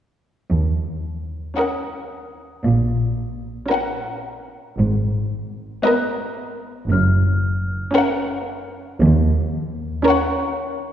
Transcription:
0.50 cello section D#2, double bass section D#2
1.57 viola section C#4, violin section A#4 F#5, celesta D#6
2.64 double bass section A#1, cello section A#2
3.70 viola section C#4, violin section A#4 F#5
4.78 double bass section G#1, cello section G#2
5.83 viola section B3, violin section A#4 D#5, celesta F#6
6.89 double bass section F#1, cello section F#2, celesta F6
7.94 viola section C#4, violin section A#4 F#5
9.00 double bass section D#2, cello section D#2
10.05 viola section C#4, violin section A#4, celesta C#5 C#6
10.09 violin section F#5

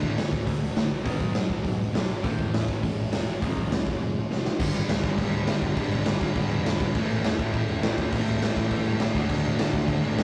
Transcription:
Already playing: distorted electric guitar D3 A3 D4 F#4
0.03 picked electric bass A2, kick
0.17 picked electric bass A2, distorted electric guitar D3 A3 D4 F#4, snare, open hi-hat
0.33 picked electric bass D2, kick
0.46 picked electric bass D2, distorted electric guitar D3 A3 D4 F#4, kick, open hi-hat
0.61 picked electric bass D2
0.75 picked electric bass A1, distorted electric guitar D3 A3 D4 F#4, snare, open hi-hat
0.90 picked electric bass B1
1.05 picked electric bass B1, distorted electric guitar B2 F#3 B3 D4 F#4, kick, open hi-hat
1.20 picked electric bass F#2, kick
1.34 picked electric bass F#2, distorted electric guitar B2 F#3 B3 D4 F#4, snare, open hi-hat
1.50 picked electric bass B1, kick
1.63 picked electric bass B1, distorted electric guitar B2 F#3 B3 D4 F#4, kick, open hi-hat
1.80 picked electric bass B1
1.94 picked electric bass F#1, distorted electric guitar B2 F#3 B3 D4 F#4, snare, open hi-hat
2.09 picked electric bass G#1
2.23 picked electric bass A1, distorted electric guitar A2 E3 A3 C#4 E4, kick, open hi-hat
2.39 picked electric bass E2, kick
2.52 picked electric bass E2, distorted electric guitar A2 E3 A3 C#4 E4, snare, open hi-hat
2.68 picked electric bass A1, kick
2.82 picked electric bass A1, distorted electric guitar A2 E3 A3 C#4 E4, kick, open hi-hat
3.00 picked electric bass A1
3.12 picked electric bass E1, distorted electric guitar A2 E3 A3 C#4 E4, snare, open hi-hat
3.28 picked electric bass G1
3.42 picked electric bass F1, overdriven electric guitar F2 C3, distorted electric guitar F3 A3 C4 F4, kick, open hi-hat
3.57 picked electric bass C2, kick
3.71 picked electric bass C2, overdriven electric guitar F2 C3, distorted electric guitar F3 A3 C4 F4, snare, open hi-hat
3.87 picked electric bass F1, kick
4.01 overdriven electric guitar F2 C3, distorted electric guitar F3 A3 C4 F4
4.30 overdriven electric guitar F2 C3, distorted electric guitar F3 A3 C4 F4, snare
4.45 snare
4.59 picked electric bass G1, distorted electric guitar G2 D3 G3 B3 D4, kick, crash
4.74 crash
4.88 picked electric bass D2, snare, crash
5.02 picked electric bass G1, overdriven electric guitar G2 D3 G3, kick, crash
5.17 picked electric bass G1, distorted electric guitar G2 D3 G3 B3, kick, crash
5.21 distorted electric guitar D4
5.32 picked electric bass D2, crash
5.46 picked electric bass G1, overdriven electric guitar G2 D3 G3, snare, crash
5.61 picked electric bass B1, kick, crash
5.76 picked electric bass G1, distorted electric guitar G2 D3 G3 B3 D4, kick, crash
5.91 picked electric bass B1, crash
6.06 picked electric bass G1, snare, crash
6.20 picked electric bass G1, overdriven electric guitar G2 D3 G3, kick, crash
6.35 picked electric bass G1, distorted electric guitar G2 D3 G3 B3 D4, kick, crash
6.49 picked electric bass E2, crash
6.65 picked electric bass E1, overdriven electric guitar G2 D3 G3, snare, crash
6.80 picked electric bass B1, kick, crash
6.94 picked electric bass A1, distorted electric guitar A2 E3 A3 C#4 E4, kick, crash
7.10 crash
7.24 picked electric bass E2, snare, crash
7.38 picked electric bass A1, overdriven electric guitar A2 E3 A3, kick, crash
7.53 picked electric bass A1, distorted electric guitar A2 E3 A3 C#4, kick, crash
7.58 distorted electric guitar E4
7.68 picked electric bass E1, crash
7.82 picked electric bass A1, overdriven electric guitar A2 E3 A3, snare, crash
7.98 picked electric bass D2, kick, crash
8.12 picked electric bass A1, distorted electric guitar A2 E3 A3 C#4 E4, kick, crash
8.27 picked electric bass C#2, crash
8.42 picked electric bass A1, snare, crash
8.56 picked electric bass A1, overdriven electric guitar E3 A3, kick, crash
8.60 overdriven electric guitar A2
8.69 picked electric bass A1, distorted electric guitar A2 E3 A3 C#4 E4, kick, crash
8.85 picked electric bass G2, crash
9.00 picked electric bass G1, overdriven electric guitar A2 E3 A3, snare, crash
9.14 picked electric bass D2, distorted electric guitar D3 A3 D4 F#4, kick, crash
9.29 picked electric bass D2, kick, crash
9.45 crash
9.58 picked electric bass A2, overdriven electric guitar D3 A3 D4, snare, crash
9.72 picked electric bass D2, distorted electric guitar A3 D4 F#4, kick, crash
9.76 distorted electric guitar D3
9.88 picked electric bass D2, kick, crash
10.02 picked electric bass A1, overdriven electric guitar D3 A3 D4, crash
10.18 picked electric bass D2, snare, crash

